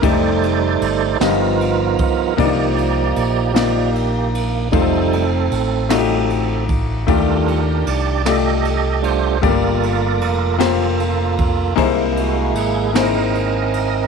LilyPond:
<<
  \new Staff \with { instrumentName = "Grand piano" } { \time 6/8 \key c \dorian \tempo 4. = 51 <a ees' g' d''>4. <g, b f' g' dis''>4. | <c bes d' ees' f' d''>4. <bes ees' f' d''>4. | <a ees' f' c''>4. <a ees' f' ges' g'>4. | <ees a f' g' d''>4. <a f' g' d''>4. |
<g, a bes f' g' d''>4. <bes f' g' c''>4. | <c bes dis' e' gis' c''>4. <bes dis' e' gis' c''>4. | }
  \new Staff \with { instrumentName = "Tonewheel organ" } { \time 6/8 \key c \dorian << { c''4. ais'4. | g'4. g'4 r8 | a'2~ a'8 r8 | bes'4 d''8 ees''4 c''8 |
d''4 r2 | r8 ges'8 gis'8 bes'4. | } \\ { <ees' a'>4. f'4. | ees'4. ees'4. | <c' ees'>2~ <c' ees'>8 r8 | g'4. <g' a'>4. |
<f' bes'>4. r4. | r4. <c' dis''>4. | } >> }
  \new Staff \with { instrumentName = "Tonewheel organ" } { \time 6/8 \key c \dorian <g a d''>4. <f b dis'>4. | <f bes d''>4. <f bes d''>8 r4 | <g a>8 r4 <g a ees'>8 r4 | <g d' f' a'>8 r2 <g a d' f'>8 |
<bes a'>2. | <gis bes e'>4. r4. | }
  \new Staff \with { instrumentName = "Fingered electric bass" } { \clef bass \time 6/8 \key c \dorian f,,4 g,,8 g,,4 r8 | c,4 bes,,2 | f,,4 a,,2 | ees,4 c,2 |
g,,4 f,,2 | c,4 gis,,2 | }
  \new DrumStaff \with { instrumentName = "Drums" } \drummode { \time 6/8 <bd cymr>8 cymr8 cymr8 <cymr sn>8 cymr8 <bd cymr>8 | <bd cymr>8 cymr8 cymr8 <cymr sn>8 cymr8 cymr8 | <bd cymr>8 cymr8 cymr8 <cymr sn>8 cymr8 <bd cymr>8 | <bd cymr>8 cymr8 cymr8 <cymr sn>8 cymr8 cymr8 |
<bd cymr>8 cymr8 cymr8 <cymr sn>8 cymr8 <bd cymr>8 | <bd cymr>8 cymr8 cymr8 <cymr sn>8 cymr8 cymr8 | }
>>